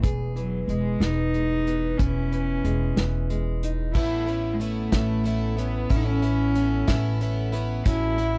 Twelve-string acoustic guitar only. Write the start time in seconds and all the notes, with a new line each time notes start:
3.94 A2 A3 B3 C#4 E4
4.26 B3 C#4 E4
4.60 A3 B3 C#4 E4
4.92 A2 A3 B3 C#4 E4
5.24 A3 B3 C#4 E4
5.57 B3 C#4 E4
5.89 A2 A3 B3 C#4 E4
6.22 B3 C#4 E4
6.55 A3 B3 C#4 E4
6.88 A2 A3 B3 C#4 E4
7.20 A3 B3 C#4 E4
7.52 B3 C#4 E4
7.85 A2 A3 C#4 E4 F#4
8.18 C#4 E4 F#4